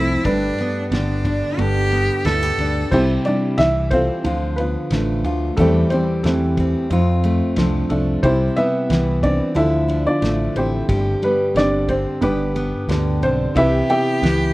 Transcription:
Already playing: C2 F2 F3 A3 C4 E4 A4
0.24 G1 G2 G3 D4 G4 A4 B4, kick, ride
0.58 B3, ride
0.91 G1 D3 B3 D4, snare, ride
1.25 D4, kick, ride
1.58 G1 G2 B3 D4 G4 A4, ride
1.92 B3, ride
2.25 D2 B3 D4 E4 A4, snare, ride
2.43 G4
2.58 D2 D4, ride
2.91 C2 C3 G3 C4 E4 G4 C5, kick, crash
3.25 G3 D4 D5, ride
3.58 C2 E3 E4 E5, snare, ride
3.91 C4 F4 A4 C5, kick, ride
4.24 D2 D3 F3 F4, ride
4.56 B3 F4 B4, ride
4.91 A1 A3 D4 A4, snare, ride
5.24 D2 F4, ride
5.57 E2 E3 G3 A3 C4 A4, kick, ride
5.61 G4
5.90 G3 C4 C5, ride
6.23 E2 E3 A3 C4 A4, snare, ride
6.57 C4, kick, ride
6.90 F2 C4 F4, ride
7.24 A3, ride
7.56 C2 F3 C4 D4 A4, snare, ride
7.90 C2 A3 D4 A4, ride
8.23 C2 C3 G3 C4 E4 G4 C5, kick, ride
8.56 B3 E4 B4 E5, ride
8.89 C2 E3 B3, snare, ride
9.23 C4 D4 D5, kick, ride
9.55 D2 D3 F3 E4 A4 E5, ride
9.88 D4, ride
10.07 D4 F4 D5
10.22 A1 A3 A4, snare, ride
10.56 A1 C4 E4 G4 C5, ride
10.89 G1 G2 G4, kick, ride
11.22 G3 B3 B4, ride
11.54 G1 D3 C4 D4 D5, snare, ride
11.89 C4 C5, kick, ride
12.21 G1 G2 B3 D4 G4 B4, ride
12.56 B3, ride
12.88 D2 D3 D4 G4, snare, ride
13.21 B1 C4 D4 C5, ride
13.55 C2 C3 E3 E4 G4 B4 E5, kick, ride
13.90 B3 G4 E5 G5, ride
14.22 C#2 E3 B3, snare, ride

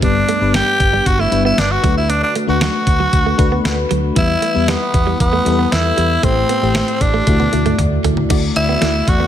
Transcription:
0.02 G1 G2 G3 B3 D4 B4, kick, closed hi-hat
0.16 muted clean electric guitar stroke
0.29 A3, closed hi-hat
0.41 G1 G3 B3 D4 B4
0.54 G3 G4, snare, closed hi-hat
0.80 G1, muted clean electric guitar stroke, kick, closed hi-hat
0.93 G3
1.06 G1 F#4, kick, closed hi-hat
1.19 A3 E4
1.31 G1 G3 B3 D4 B4, muted clean electric guitar stroke, closed hi-hat
1.45 B3 E4
1.58 G1 D4, snare, closed hi-hat
1.71 F#4
1.83 D2 D3 F#3 A3 D4 F#4 B4, kick, closed hi-hat
1.97 E4
2.09 D4, closed hi-hat
2.23 D4, muted clean electric guitar stroke
2.35 A3, closed hi-hat
2.47 D2 A3 D4 F#4 B4
2.61 F#3 F#4, snare, closed hi-hat
2.87 D2, muted clean electric guitar stroke, kick, closed hi-hat
3.00 F#3
3.13 D2, kick, closed hi-hat
3.26 A3
3.38 D2 A3 D4 F#4 B4 F#5, muted clean electric guitar stroke, kick, closed hi-hat
3.52 B3
3.64 D2 B5, snare, closed hi-hat
3.91 D2 F#3, closed hi-hat
4.16 E2 E3 G3 B3 E4 B4, kick, closed hi-hat
4.29 muted clean electric guitar stroke
4.42 A3, closed hi-hat
4.54 E2 G3 B3 E4 B4
4.68 G3 B3, snare, closed hi-hat
4.94 E2, muted clean electric guitar stroke, kick, closed hi-hat
5.07 G3
5.20 E2 B3, kick, closed hi-hat
5.33 A3
5.45 E2 G3 B3 E4 A4, muted clean electric guitar stroke, closed hi-hat
5.52 B4
5.59 B3
5.72 E2 E4, snare, closed hi-hat
5.97 E2 G3, closed hi-hat
6.23 A1 A2 A3 C4 E4 G4 C5, kick, closed hi-hat
6.37 muted clean electric guitar stroke
6.49 B3, closed hi-hat
6.62 A1 A3 E4 G4 C5
6.75 A3, snare, closed hi-hat
6.88 closed hi-hat
7.01 A1 D4, muted clean electric guitar stroke, kick, closed hi-hat
7.14 A3
7.27 D2 D3 A3 E4 F#4 D5, kick, closed hi-hat, high tom
7.40 B3, high tom
7.52 D2 A3 E4 F#4 D5, muted clean electric guitar stroke, closed hi-hat
7.66 A3, closed hi-hat, mid tom
7.79 D2, closed hi-hat, mid tom
8.04 D2 A3, closed hi-hat, floor tom
8.17 floor tom
8.30 D2 D3 A3 D4 E4 F#4 D5, kick, closed hi-hat, crash
8.56 D2 E4, muted clean electric guitar stroke, closed hi-hat
8.69 B3
8.81 D2 A3 E4 F#4 D5, snare, closed hi-hat
9.07 E2 F#4, muted clean electric guitar stroke, kick, closed hi-hat
9.20 B3

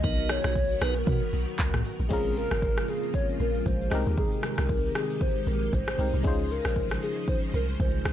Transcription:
0.04 B1 D#3 F#3 B3 D#4 F#4 A#4 D#5, kick, shaker
0.19 shaker
0.29 C#5, cross-stick, shaker
0.44 B1 B3 D#4 A#4, cross-stick, shaker
0.55 kick, shaker
0.71 shaker
0.81 B1 B3 D#4 A#4 B4, cross-stick, shaker
0.96 A#4, shaker
1.07 B2, kick, shaker
1.22 shaker
1.33 B1, shaker
1.48 shaker
1.59 C#2, kick, clap, shaker
1.74 B1, cross-stick, mid tom, shaker
1.85 open hi-hat, shaker
2.00 A#1, shaker
2.09 A#1 C#3 F3 G#3 A#3 C4 C#4 F4 G#4, kick, crash, shaker
2.13 A#4
2.25 shaker
2.37 A#4, shaker
2.51 G#1, cross-stick, shaker
2.62 kick, shaker
2.77 cross-stick, shaker
2.88 G#4, shaker
3.03 shaker
3.14 C#5, kick, shaker
3.29 shaker
3.40 A#1 A#4, shaker
3.55 shaker
3.66 A#1 C5, kick, shaker
3.81 shaker
3.90 C2 C3 D#3 G#3 C4 D#4 G4, cross-stick, shaker
3.95 A#4
4.06 D#2, shaker
4.17 G#4, kick, shaker
4.32 shaker
4.43 A#4, cross-stick, shaker
4.58 C2, cross-stick, shaker
4.69 kick, shaker
4.84 shaker
4.95 G#4, cross-stick, shaker
5.10 shaker
5.21 C5, kick, shaker
5.36 shaker
5.47 A#1 A#4, shaker
5.62 shaker
5.73 G#1 C5, kick, shaker
5.88 cross-stick, shaker
5.98 C2 G#3 C4 D#4 G4 A#4, shaker
6.14 C2, shaker
6.23 C#2 C#3 F3 G#3 C#4 D#4 F4 G#4 C5, kick, shaker
6.28 C5
6.39 shaker
6.50 A#4, shaker
6.65 A#1, cross-stick, shaker
6.76 kick, shaker
6.91 cross-stick, shaker
7.02 G#4, shaker
7.17 shaker
7.28 C5, kick, shaker
7.43 shaker
7.54 C2 A#4, shaker
7.69 shaker
7.80 C2 C5, kick, shaker
7.95 shaker
8.05 C#2, cross-stick, shaker

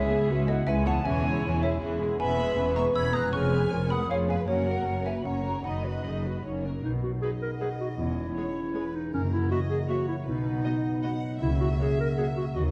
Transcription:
Already playing: C#2 C#3 B3 C#4 E4 G#4 C#5 E5
0.10 B3 E4 G#4
0.28 C#2 G#3 C#4 F#4 B4
0.46 B3 E4 G#4 A4 D#5 F#5
0.67 C#2 G#3 C#4 E4 B4 E5 G#5
0.85 E2 B3 E4 G#4 C#5 F#5 A5
0.92 G#3
0.97 C#4
1.01 E2 C#4 E4 G#4 G#5
1.05 E1 E3 C#4 C#5 E5
1.24 G#3 E4 G#4
1.43 E1 E2 E3 C#4 E4
1.62 G#3 E4 G#4 C#5 E5
1.81 E1 E2 E3 C#4 E4 G#4
2.00 E2 G#3 E4 G#4
2.06 G#3
2.10 C#4
2.15 G#4 B5
2.19 E1 E2 B3 C#4 B4 E5 G#5
2.38 G#3 B3 G#4
2.57 E1 E2 B3 C#4 B4
2.76 G#3 B3 G#4 E5 A#5 C#6
2.94 E1 E2 B3 C#4 B4 B5 E6 G#6
3.13 F2 G#3 B3 G#4 A#5 D#6 F#6
3.20 B3
3.25 C#4
3.29 F1 F3 C#4 G#4
3.33 F2 G#4 C#5 G#5 C#6 F6
3.53 G#3 B3 B4
3.71 F1 F2 F3 C#4 A#4 C#5
3.89 G#3 B3 B4 F#5 B5 D#6
4.09 F1 F2 F3 C#4 G#4 C#5 F5
4.28 F#2 G#3 B3 B4 F5 G#5
4.35 A#3
4.39 C#4
4.43 A#3 C#4 F#4
4.48 F#1 F#2 F#4 A#4 C#5 F#5
4.66 F#3 A#3 A#4
4.85 F#1 F#2 A#3 C#4 C#5
5.04 F#3 A#3 A#4 B4 E5 G#5
5.17 B5
5.24 F#1 F#2 A#3 C#4 C#5 F#5 A#5
5.44 F#2 F#3 A#3 A#4
5.51 B3
5.56 D#4
5.60 D#3 D#4 F#4 F#5
5.64 F#1 F#2 D#5 B5
5.84 F#3 F#4 B4
6.04 F#1 F#2 D#3 D#4 G#4 D#5
6.24 F#2 F#3 F#4 B4
6.31 A#3
6.35 C#4
6.40 F#4 C#5
6.44 F#1 F#2 A#3 C#4 D#4
6.64 F#3 A#3 C#4 A#4
6.84 B1 B2 F#3 D#4
6.93 F#3
7.03 B3 F#4
7.13 D#4
7.22 F#3 D#4 F#4 G#4 B4 D#5
7.32 B4
7.42 A#4 D#5
7.52 F#5
7.60 F#3 D#4 G#4 B4 D#5
7.71 B4
7.80 F#4
7.90 D#4
7.99 E1 E2 E3 C#4 E4
8.09 E3
8.19 G#3
8.27 C#4
8.36 G#3 G#4 C#5
8.46 C#4
8.65 G#5
8.74 G#3 G#4 B4 C#5
8.84 G#4
8.93 C#4 D#4
9.04 G#3
9.13 F#1 F#2 A#3 C#4 A#4
9.22 C#3
9.32 F#3 E4
9.41 E4
9.50 A#3 F#4 A#4 D#5 E5
9.60 F#4
9.69 G#4 E5
9.79 A#5
9.88 A#3 F#4 C#5 E5
9.98 F#4
10.07 E4 A#4
10.17 E4
10.25 B1 B2 F#3 B3 D#4 B4
10.36 B3
10.45 F#3
10.55 D#4
10.64 B3 F#4 B4 D#5
10.74 F#4
10.84 D#5
10.94 B5
11.02 B3 F#4 D#5 F#5
11.13 F#4
11.23 B4
11.32 D#4
11.41 C#2 C#3 A#3 E4 E5
11.50 F#3
11.60 C#4 F#4
11.70 A#4
11.79 A#3 F#4 G#4 C#5
11.89 C#5
11.98 A#4 A#5
12.08 F#5
12.17 A#3 F#4 G#4 C#5 A#5
12.28 C#5
12.37 F#4
12.47 A#4
12.56 D#2 D#3 F#3 B3 F#4 D#5
12.66 F#3

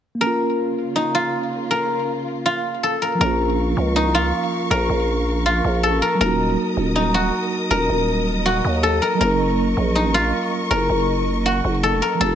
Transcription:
0.15 A#3
0.21 C#3 A#3 C#4 F4 A#4
0.27 F4
0.96 D#4
1.15 F4
1.71 A#4
2.46 F4
2.83 A4
3.02 A#4
3.15 F3 A#3
3.21 A#1 C#4 A#4 F5 C#6
3.27 F4
3.77 C#2
3.96 D#4
4.05 C2
4.15 F4
4.19 C#2
4.71 A#1 A#4
4.89 A#1
5.46 F4
5.64 A#1
5.83 A4
5.93 A1
6.02 A#4
6.15 F#3 A#3
6.21 D#1 D#4 A#4 D#5 D#6
6.27 F#4
6.77 D#1
6.96 D#4
7.14 F#4
7.71 D#1 A#4
7.89 D#1
8.46 F#4
8.65 D#2
8.83 A4
9.02 A#4
9.15 F#3 A#3
9.21 F#1 C#4 A#4 C#6
9.27 A#4
9.77 A#1
9.95 D#4
10.05 A1
10.14 F4
10.19 A#1
10.71 F#1 A#4
10.90 F#1
11.46 F#4
11.65 F#1
11.83 A4
11.93 F1
12.02 A#4
12.15 F3 A3
12.21 F1 C4 A4 F5 C6
12.27 F4

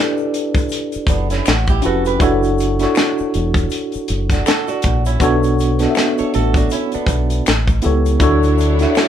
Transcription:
Already playing: D4 E4 G4 A4 B4 D5
0.17 shaker
0.34 closed hi-hat
0.55 kick, closed hi-hat, shaker
0.69 closed hi-hat, shaker
0.92 muted fingered electric bass stroke, closed hi-hat, shaker
1.07 F#1 B3 D4, kick, closed hi-hat, shaker
1.30 C#4 E4, snare, closed hi-hat, shaker
1.46 A1 F#4, finger snap, snare, closed hi-hat, shaker
1.67 E4 G4, kick, shaker
1.82 F1 C#4 E4 F#4 G4 A4, closed hi-hat, shaker
1.86 F#4 B4
2.05 G4 B4, closed hi-hat, shaker
2.19 F#1 D4 E4 F#4 A4, kick, closed hi-hat, shaker
2.23 C#5
2.43 closed hi-hat, shaker
2.58 closed hi-hat, shaker
2.79 D4 E4 F#4 A4, snare, closed hi-hat, shaker
2.83 C#5
2.95 finger snap, snare, closed hi-hat, shaker
3.18 muted fingered electric bass stroke, shaker
3.34 E1, closed hi-hat
3.54 kick, closed hi-hat, shaker
3.70 closed hi-hat, shaker
3.92 muted fingered electric bass stroke, closed hi-hat, shaker
4.08 F#1, closed hi-hat, shaker
4.30 D4 F#4, kick, snare, closed hi-hat, shaker
4.46 F#4 A4, finger snap, snare, closed hi-hat, shaker
4.67 D4 F#4, closed hi-hat, shaker
4.82 A#1, kick, closed hi-hat, shaker
5.05 C#4 E4, closed hi-hat, shaker
5.20 B1 B3 D4 F#4 A4 C#5, kick, closed hi-hat, shaker
5.43 closed hi-hat, shaker
5.59 closed hi-hat, shaker
5.79 B3 D4 F#4 A4, snare, closed hi-hat, shaker
5.84 D#5
5.90 E5
5.95 finger snap, snare, closed hi-hat, shaker
6.18 A4 C#5, muted fingered electric bass stroke, closed hi-hat, shaker
6.34 A1 F#4 A4, closed hi-hat
6.54 D4 F#4, kick, closed hi-hat, shaker
6.70 C#4 E4, closed hi-hat, shaker
6.92 B3 D4, muted fingered electric bass stroke, closed hi-hat, shaker
7.07 B1, kick, closed hi-hat, shaker
7.30 closed hi-hat, shaker
7.46 A1, finger snap, snare, closed hi-hat, shaker
7.67 kick, closed hi-hat, shaker
7.82 C#2 B3 E4 G4 A4, closed hi-hat, shaker
7.86 C#5
8.06 closed hi-hat, shaker
8.19 D2 F#3 D4 E4 F#4 A4 C#5, kick, closed hi-hat, shaker
8.23 C#5
8.43 closed hi-hat, shaker
8.58 closed hi-hat, shaker
8.79 D4 E4 F#4 A4, snare, closed hi-hat, shaker
8.83 E5
8.95 finger snap, snare, closed hi-hat, shaker

